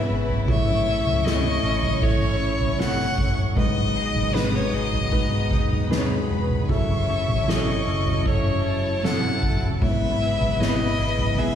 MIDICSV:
0, 0, Header, 1, 8, 480
1, 0, Start_track
1, 0, Tempo, 771208
1, 301, Time_signature, 4, 2, 24, 8
1, 2704, Tempo, 781250
1, 7131, End_track
2, 0, Start_track
2, 0, Title_t, "Violin section"
2, 0, Program_c, 0, 48
2, 0, Note_on_c, 0, 71, 82
2, 0, Note_on_c, 0, 83, 87
2, 276, Note_off_c, 0, 83, 0
2, 277, Note_off_c, 0, 71, 0
2, 300, Note_on_c, 0, 85, 87
2, 301, Note_on_c, 0, 73, 83
2, 2197, Note_off_c, 0, 73, 0
2, 2197, Note_off_c, 0, 85, 0
2, 2223, Note_on_c, 0, 75, 77
2, 2223, Note_on_c, 0, 87, 96
2, 3640, Note_off_c, 0, 87, 0
2, 3641, Note_off_c, 0, 75, 0
2, 3665, Note_on_c, 0, 83, 82
2, 3667, Note_on_c, 0, 71, 73
2, 4138, Note_off_c, 0, 83, 0
2, 4139, Note_off_c, 0, 71, 0
2, 4151, Note_on_c, 0, 85, 87
2, 4152, Note_on_c, 0, 73, 76
2, 5328, Note_off_c, 0, 73, 0
2, 5328, Note_off_c, 0, 85, 0
2, 5350, Note_on_c, 0, 69, 77
2, 5350, Note_on_c, 0, 81, 88
2, 6053, Note_off_c, 0, 69, 0
2, 6053, Note_off_c, 0, 81, 0
2, 6070, Note_on_c, 0, 83, 93
2, 6071, Note_on_c, 0, 71, 83
2, 7131, Note_off_c, 0, 71, 0
2, 7131, Note_off_c, 0, 83, 0
2, 7131, End_track
3, 0, Start_track
3, 0, Title_t, "Violin"
3, 0, Program_c, 1, 40
3, 0, Note_on_c, 1, 76, 94
3, 65, Note_off_c, 1, 76, 0
3, 308, Note_on_c, 1, 76, 93
3, 776, Note_on_c, 1, 75, 100
3, 785, Note_off_c, 1, 76, 0
3, 1261, Note_on_c, 1, 73, 100
3, 1270, Note_off_c, 1, 75, 0
3, 1735, Note_on_c, 1, 78, 109
3, 1744, Note_off_c, 1, 73, 0
3, 2099, Note_off_c, 1, 78, 0
3, 2220, Note_on_c, 1, 75, 96
3, 2704, Note_on_c, 1, 71, 82
3, 2714, Note_off_c, 1, 75, 0
3, 2830, Note_on_c, 1, 73, 78
3, 2839, Note_off_c, 1, 71, 0
3, 2942, Note_on_c, 1, 75, 88
3, 2951, Note_off_c, 1, 73, 0
3, 3664, Note_off_c, 1, 75, 0
3, 4158, Note_on_c, 1, 76, 82
3, 4638, Note_on_c, 1, 75, 81
3, 4647, Note_off_c, 1, 76, 0
3, 5114, Note_on_c, 1, 73, 83
3, 5123, Note_off_c, 1, 75, 0
3, 5592, Note_on_c, 1, 78, 81
3, 5601, Note_off_c, 1, 73, 0
3, 5949, Note_off_c, 1, 78, 0
3, 6071, Note_on_c, 1, 76, 95
3, 6549, Note_on_c, 1, 75, 95
3, 6558, Note_off_c, 1, 76, 0
3, 7029, Note_on_c, 1, 76, 92
3, 7038, Note_off_c, 1, 75, 0
3, 7131, Note_off_c, 1, 76, 0
3, 7131, End_track
4, 0, Start_track
4, 0, Title_t, "Clean electric guitar"
4, 0, Program_c, 2, 27
4, 0, Note_on_c, 2, 44, 78
4, 0, Note_on_c, 2, 59, 65
4, 0, Note_on_c, 2, 64, 62
4, 0, Note_on_c, 2, 68, 57
4, 298, Note_off_c, 2, 44, 0
4, 300, Note_on_c, 2, 45, 82
4, 348, Note_off_c, 2, 59, 0
4, 349, Note_off_c, 2, 68, 0
4, 539, Note_on_c, 2, 61, 54
4, 541, Note_off_c, 2, 64, 0
4, 544, Note_on_c, 2, 64, 61
4, 547, Note_on_c, 2, 69, 65
4, 773, Note_off_c, 2, 64, 0
4, 780, Note_on_c, 2, 64, 63
4, 1009, Note_off_c, 2, 61, 0
4, 1012, Note_off_c, 2, 64, 0
4, 1016, Note_on_c, 2, 61, 56
4, 1017, Note_off_c, 2, 69, 0
4, 1020, Note_on_c, 2, 64, 59
4, 1025, Note_on_c, 2, 69, 62
4, 1252, Note_off_c, 2, 61, 0
4, 1259, Note_on_c, 2, 61, 63
4, 1490, Note_off_c, 2, 64, 0
4, 1498, Note_on_c, 2, 64, 58
4, 1735, Note_off_c, 2, 69, 0
4, 1742, Note_on_c, 2, 69, 69
4, 2221, Note_off_c, 2, 45, 0
4, 2224, Note_on_c, 2, 44, 78
4, 2269, Note_off_c, 2, 64, 0
4, 2270, Note_off_c, 2, 61, 0
4, 2271, Note_off_c, 2, 69, 0
4, 2460, Note_on_c, 2, 59, 56
4, 2463, Note_on_c, 2, 63, 55
4, 2467, Note_on_c, 2, 68, 64
4, 2700, Note_off_c, 2, 63, 0
4, 2707, Note_on_c, 2, 63, 60
4, 2940, Note_off_c, 2, 59, 0
4, 2945, Note_off_c, 2, 63, 0
4, 2946, Note_off_c, 2, 68, 0
4, 2947, Note_on_c, 2, 59, 54
4, 2952, Note_on_c, 2, 63, 56
4, 2954, Note_on_c, 2, 68, 59
4, 3178, Note_off_c, 2, 59, 0
4, 3186, Note_on_c, 2, 59, 62
4, 3419, Note_off_c, 2, 63, 0
4, 3427, Note_on_c, 2, 63, 56
4, 3657, Note_off_c, 2, 68, 0
4, 3664, Note_on_c, 2, 68, 65
4, 4148, Note_on_c, 2, 54, 73
4, 4149, Note_off_c, 2, 44, 0
4, 4196, Note_off_c, 2, 68, 0
4, 4197, Note_off_c, 2, 59, 0
4, 4198, Note_off_c, 2, 63, 0
4, 4387, Note_on_c, 2, 61, 53
4, 4390, Note_on_c, 2, 64, 54
4, 4394, Note_on_c, 2, 69, 63
4, 4626, Note_off_c, 2, 64, 0
4, 4628, Note_on_c, 2, 64, 62
4, 4865, Note_off_c, 2, 61, 0
4, 4868, Note_off_c, 2, 69, 0
4, 4868, Note_on_c, 2, 61, 57
4, 4870, Note_off_c, 2, 64, 0
4, 4872, Note_on_c, 2, 64, 58
4, 4875, Note_on_c, 2, 69, 59
4, 5106, Note_off_c, 2, 61, 0
4, 5109, Note_on_c, 2, 61, 66
4, 5344, Note_off_c, 2, 64, 0
4, 5347, Note_on_c, 2, 64, 52
4, 5579, Note_off_c, 2, 69, 0
4, 5586, Note_on_c, 2, 69, 61
4, 6068, Note_off_c, 2, 54, 0
4, 6068, Note_on_c, 2, 44, 78
4, 6114, Note_off_c, 2, 69, 0
4, 6305, Note_off_c, 2, 61, 0
4, 6308, Note_on_c, 2, 59, 56
4, 6310, Note_off_c, 2, 64, 0
4, 6313, Note_on_c, 2, 64, 57
4, 6316, Note_on_c, 2, 68, 62
4, 6545, Note_off_c, 2, 64, 0
4, 6547, Note_on_c, 2, 64, 58
4, 6778, Note_off_c, 2, 59, 0
4, 6786, Note_off_c, 2, 68, 0
4, 6786, Note_on_c, 2, 59, 52
4, 6787, Note_off_c, 2, 64, 0
4, 6790, Note_on_c, 2, 64, 52
4, 6793, Note_on_c, 2, 68, 58
4, 7016, Note_off_c, 2, 59, 0
4, 7024, Note_on_c, 2, 59, 64
4, 7131, Note_off_c, 2, 44, 0
4, 7131, Note_off_c, 2, 59, 0
4, 7131, Note_off_c, 2, 64, 0
4, 7131, Note_off_c, 2, 68, 0
4, 7131, End_track
5, 0, Start_track
5, 0, Title_t, "Grand piano"
5, 0, Program_c, 3, 0
5, 0, Control_c, 3, 64, 127
5, 0, Note_on_c, 3, 59, 70
5, 0, Note_on_c, 3, 64, 68
5, 0, Note_on_c, 3, 73, 84
5, 279, Note_off_c, 3, 59, 0
5, 280, Note_off_c, 3, 64, 0
5, 281, Note_off_c, 3, 73, 0
5, 304, Note_on_c, 3, 52, 64
5, 304, Note_on_c, 3, 57, 75
5, 305, Note_on_c, 3, 64, 63
5, 307, Note_on_c, 3, 45, 62
5, 308, Note_on_c, 3, 73, 78
5, 309, Control_c, 3, 64, 0
5, 420, Control_c, 3, 64, 127
5, 756, Note_off_c, 3, 57, 0
5, 757, Note_off_c, 3, 64, 0
5, 758, Note_off_c, 3, 73, 0
5, 780, Note_on_c, 3, 57, 71
5, 782, Note_on_c, 3, 64, 60
5, 785, Note_on_c, 3, 75, 74
5, 995, Note_off_c, 3, 52, 0
5, 996, Note_off_c, 3, 45, 0
5, 1236, Note_off_c, 3, 57, 0
5, 1237, Note_off_c, 3, 64, 0
5, 1238, Note_off_c, 3, 75, 0
5, 1256, Note_on_c, 3, 57, 73
5, 1258, Note_on_c, 3, 64, 68
5, 1262, Note_on_c, 3, 73, 74
5, 1715, Note_off_c, 3, 57, 0
5, 1716, Note_off_c, 3, 64, 0
5, 1718, Note_off_c, 3, 73, 0
5, 1735, Note_on_c, 3, 57, 73
5, 1737, Note_on_c, 3, 64, 66
5, 1740, Note_on_c, 3, 73, 81
5, 2195, Note_off_c, 3, 57, 0
5, 2196, Note_off_c, 3, 64, 0
5, 2197, Note_off_c, 3, 73, 0
5, 2217, Note_on_c, 3, 56, 69
5, 2218, Note_on_c, 3, 44, 63
5, 2219, Note_on_c, 3, 51, 56
5, 2219, Note_on_c, 3, 63, 57
5, 2222, Note_on_c, 3, 71, 70
5, 2231, Control_c, 3, 64, 0
5, 2353, Control_c, 3, 64, 127
5, 2678, Note_off_c, 3, 56, 0
5, 2679, Note_off_c, 3, 63, 0
5, 2681, Note_off_c, 3, 71, 0
5, 2703, Note_on_c, 3, 56, 72
5, 2706, Note_on_c, 3, 63, 60
5, 2710, Note_on_c, 3, 71, 69
5, 2917, Note_off_c, 3, 44, 0
5, 2918, Note_off_c, 3, 51, 0
5, 3158, Note_off_c, 3, 56, 0
5, 3160, Note_off_c, 3, 63, 0
5, 3162, Note_off_c, 3, 71, 0
5, 3180, Note_on_c, 3, 56, 65
5, 3182, Note_on_c, 3, 63, 59
5, 3185, Note_on_c, 3, 71, 76
5, 3639, Note_off_c, 3, 56, 0
5, 3640, Note_off_c, 3, 63, 0
5, 3641, Note_off_c, 3, 71, 0
5, 3661, Note_on_c, 3, 56, 79
5, 3662, Note_on_c, 3, 63, 67
5, 3665, Note_on_c, 3, 71, 71
5, 3704, Note_on_c, 3, 73, 84
5, 3705, Note_off_c, 3, 71, 0
5, 4122, Note_off_c, 3, 56, 0
5, 4122, Note_off_c, 3, 63, 0
5, 4143, Note_off_c, 3, 73, 0
5, 4145, Note_on_c, 3, 54, 69
5, 4147, Note_on_c, 3, 64, 62
5, 4148, Note_on_c, 3, 49, 57
5, 4150, Note_on_c, 3, 69, 70
5, 4154, Control_c, 3, 64, 0
5, 4273, Control_c, 3, 64, 127
5, 4604, Note_off_c, 3, 54, 0
5, 4605, Note_off_c, 3, 64, 0
5, 4606, Note_off_c, 3, 69, 0
5, 4626, Note_on_c, 3, 54, 69
5, 4628, Note_on_c, 3, 64, 61
5, 4632, Note_on_c, 3, 68, 59
5, 4671, Note_off_c, 3, 68, 0
5, 4672, Note_on_c, 3, 69, 70
5, 4846, Note_off_c, 3, 49, 0
5, 5085, Note_off_c, 3, 54, 0
5, 5086, Note_off_c, 3, 64, 0
5, 5103, Note_off_c, 3, 69, 0
5, 5108, Note_on_c, 3, 54, 64
5, 5109, Note_on_c, 3, 64, 58
5, 5112, Note_on_c, 3, 69, 73
5, 5564, Note_off_c, 3, 54, 0
5, 5564, Note_off_c, 3, 64, 0
5, 5566, Note_off_c, 3, 69, 0
5, 5584, Note_on_c, 3, 54, 73
5, 5588, Note_on_c, 3, 64, 63
5, 5590, Note_on_c, 3, 69, 72
5, 6041, Note_off_c, 3, 54, 0
5, 6043, Note_off_c, 3, 64, 0
5, 6044, Note_off_c, 3, 69, 0
5, 6065, Note_on_c, 3, 59, 70
5, 6066, Note_on_c, 3, 44, 60
5, 6068, Note_on_c, 3, 56, 60
5, 6068, Note_on_c, 3, 64, 62
5, 6070, Note_on_c, 3, 73, 72
5, 6075, Control_c, 3, 64, 0
5, 6186, Control_c, 3, 64, 127
5, 6522, Note_off_c, 3, 59, 0
5, 6524, Note_off_c, 3, 64, 0
5, 6525, Note_off_c, 3, 73, 0
5, 6543, Note_on_c, 3, 59, 66
5, 6547, Note_on_c, 3, 64, 66
5, 6551, Note_on_c, 3, 73, 74
5, 6762, Note_off_c, 3, 44, 0
5, 6763, Note_off_c, 3, 56, 0
5, 6999, Note_off_c, 3, 59, 0
5, 7001, Note_off_c, 3, 64, 0
5, 7002, Note_off_c, 3, 73, 0
5, 7024, Note_on_c, 3, 59, 67
5, 7028, Note_on_c, 3, 64, 58
5, 7031, Note_on_c, 3, 68, 80
5, 7131, Note_off_c, 3, 59, 0
5, 7131, Note_off_c, 3, 64, 0
5, 7131, Note_off_c, 3, 68, 0
5, 7131, End_track
6, 0, Start_track
6, 0, Title_t, "String section"
6, 0, Program_c, 4, 48
6, 0, Note_on_c, 4, 49, 70
6, 0, Note_on_c, 4, 52, 67
6, 0, Note_on_c, 4, 56, 64
6, 0, Note_on_c, 4, 59, 62
6, 0, Note_on_c, 4, 64, 83
6, 282, Note_off_c, 4, 59, 0
6, 283, Note_off_c, 4, 56, 0
6, 303, Note_on_c, 4, 61, 73
6, 305, Note_on_c, 4, 45, 73
6, 2196, Note_off_c, 4, 49, 0
6, 2198, Note_off_c, 4, 52, 0
6, 2199, Note_off_c, 4, 64, 0
6, 2203, Note_off_c, 4, 61, 0
6, 2204, Note_off_c, 4, 45, 0
6, 2222, Note_on_c, 4, 47, 67
6, 2223, Note_on_c, 4, 44, 66
6, 2223, Note_on_c, 4, 51, 63
6, 2223, Note_on_c, 4, 59, 63
6, 2223, Note_on_c, 4, 63, 75
6, 4129, Note_off_c, 4, 44, 0
6, 4129, Note_off_c, 4, 47, 0
6, 4129, Note_off_c, 4, 51, 0
6, 4129, Note_off_c, 4, 59, 0
6, 4129, Note_off_c, 4, 63, 0
6, 4146, Note_on_c, 4, 52, 62
6, 4147, Note_on_c, 4, 57, 65
6, 4148, Note_on_c, 4, 49, 63
6, 4148, Note_on_c, 4, 54, 60
6, 4149, Note_on_c, 4, 64, 74
6, 6048, Note_off_c, 4, 54, 0
6, 6048, Note_off_c, 4, 57, 0
6, 6049, Note_off_c, 4, 49, 0
6, 6062, Note_on_c, 4, 56, 68
6, 6064, Note_on_c, 4, 49, 65
6, 6064, Note_on_c, 4, 59, 65
6, 7131, Note_off_c, 4, 49, 0
6, 7131, Note_off_c, 4, 52, 0
6, 7131, Note_off_c, 4, 56, 0
6, 7131, Note_off_c, 4, 59, 0
6, 7131, Note_off_c, 4, 64, 0
6, 7131, End_track
7, 0, Start_track
7, 0, Title_t, "Fingered electric bass"
7, 0, Program_c, 5, 33
7, 64, Note_on_c, 5, 32, 97
7, 285, Note_off_c, 5, 32, 0
7, 299, Note_on_c, 5, 33, 109
7, 633, Note_off_c, 5, 33, 0
7, 655, Note_on_c, 5, 37, 89
7, 992, Note_off_c, 5, 37, 0
7, 1015, Note_on_c, 5, 33, 97
7, 1241, Note_off_c, 5, 33, 0
7, 1257, Note_on_c, 5, 33, 102
7, 1956, Note_off_c, 5, 33, 0
7, 1980, Note_on_c, 5, 30, 91
7, 2204, Note_off_c, 5, 30, 0
7, 2219, Note_on_c, 5, 32, 109
7, 2557, Note_off_c, 5, 32, 0
7, 2584, Note_on_c, 5, 32, 84
7, 2920, Note_off_c, 5, 32, 0
7, 2944, Note_on_c, 5, 32, 99
7, 3399, Note_off_c, 5, 32, 0
7, 3420, Note_on_c, 5, 39, 75
7, 3880, Note_off_c, 5, 39, 0
7, 3907, Note_on_c, 5, 28, 85
7, 4131, Note_off_c, 5, 28, 0
7, 4147, Note_on_c, 5, 30, 97
7, 4484, Note_off_c, 5, 30, 0
7, 4512, Note_on_c, 5, 33, 76
7, 4847, Note_off_c, 5, 33, 0
7, 4872, Note_on_c, 5, 30, 94
7, 5095, Note_off_c, 5, 30, 0
7, 5110, Note_on_c, 5, 30, 91
7, 5803, Note_off_c, 5, 30, 0
7, 5828, Note_on_c, 5, 30, 85
7, 6051, Note_off_c, 5, 30, 0
7, 6069, Note_on_c, 5, 32, 108
7, 6404, Note_off_c, 5, 32, 0
7, 6427, Note_on_c, 5, 32, 93
7, 6762, Note_off_c, 5, 32, 0
7, 6788, Note_on_c, 5, 32, 91
7, 7131, Note_off_c, 5, 32, 0
7, 7131, End_track
8, 0, Start_track
8, 0, Title_t, "Drums"
8, 181, Note_on_c, 9, 43, 59
8, 243, Note_off_c, 9, 43, 0
8, 300, Note_on_c, 9, 36, 98
8, 300, Note_on_c, 9, 43, 100
8, 363, Note_off_c, 9, 36, 0
8, 363, Note_off_c, 9, 43, 0
8, 657, Note_on_c, 9, 43, 68
8, 719, Note_off_c, 9, 43, 0
8, 789, Note_on_c, 9, 38, 98
8, 851, Note_off_c, 9, 38, 0
8, 1137, Note_on_c, 9, 43, 72
8, 1199, Note_off_c, 9, 43, 0
8, 1257, Note_on_c, 9, 36, 81
8, 1257, Note_on_c, 9, 43, 64
8, 1319, Note_off_c, 9, 36, 0
8, 1320, Note_off_c, 9, 43, 0
8, 1620, Note_on_c, 9, 43, 73
8, 1682, Note_off_c, 9, 43, 0
8, 1745, Note_on_c, 9, 38, 126
8, 1807, Note_off_c, 9, 38, 0
8, 1980, Note_on_c, 9, 36, 85
8, 2042, Note_off_c, 9, 36, 0
8, 2098, Note_on_c, 9, 43, 52
8, 2160, Note_off_c, 9, 43, 0
8, 2218, Note_on_c, 9, 43, 99
8, 2220, Note_on_c, 9, 36, 95
8, 2280, Note_off_c, 9, 43, 0
8, 2283, Note_off_c, 9, 36, 0
8, 2580, Note_on_c, 9, 43, 69
8, 2643, Note_off_c, 9, 43, 0
8, 2714, Note_on_c, 9, 38, 100
8, 2776, Note_off_c, 9, 38, 0
8, 3062, Note_on_c, 9, 43, 65
8, 3123, Note_off_c, 9, 43, 0
8, 3182, Note_on_c, 9, 36, 74
8, 3183, Note_on_c, 9, 43, 68
8, 3243, Note_off_c, 9, 36, 0
8, 3244, Note_off_c, 9, 43, 0
8, 3420, Note_on_c, 9, 36, 84
8, 3482, Note_off_c, 9, 36, 0
8, 3544, Note_on_c, 9, 43, 65
8, 3605, Note_off_c, 9, 43, 0
8, 3671, Note_on_c, 9, 38, 125
8, 3732, Note_off_c, 9, 38, 0
8, 4024, Note_on_c, 9, 43, 53
8, 4085, Note_off_c, 9, 43, 0
8, 4145, Note_on_c, 9, 43, 103
8, 4147, Note_on_c, 9, 36, 107
8, 4207, Note_off_c, 9, 43, 0
8, 4208, Note_off_c, 9, 36, 0
8, 4506, Note_on_c, 9, 43, 67
8, 4568, Note_off_c, 9, 43, 0
8, 4638, Note_on_c, 9, 38, 91
8, 4699, Note_off_c, 9, 38, 0
8, 4986, Note_on_c, 9, 43, 68
8, 5048, Note_off_c, 9, 43, 0
8, 5108, Note_on_c, 9, 36, 82
8, 5109, Note_on_c, 9, 43, 63
8, 5170, Note_off_c, 9, 36, 0
8, 5170, Note_off_c, 9, 43, 0
8, 5595, Note_on_c, 9, 38, 127
8, 5656, Note_off_c, 9, 38, 0
8, 5828, Note_on_c, 9, 36, 79
8, 5889, Note_off_c, 9, 36, 0
8, 5947, Note_on_c, 9, 43, 58
8, 6009, Note_off_c, 9, 43, 0
8, 6067, Note_on_c, 9, 36, 110
8, 6067, Note_on_c, 9, 43, 107
8, 6128, Note_off_c, 9, 43, 0
8, 6129, Note_off_c, 9, 36, 0
8, 6428, Note_on_c, 9, 43, 66
8, 6489, Note_off_c, 9, 43, 0
8, 6558, Note_on_c, 9, 38, 100
8, 6620, Note_off_c, 9, 38, 0
8, 6905, Note_on_c, 9, 43, 66
8, 6966, Note_off_c, 9, 43, 0
8, 7025, Note_on_c, 9, 43, 66
8, 7086, Note_off_c, 9, 43, 0
8, 7131, End_track
0, 0, End_of_file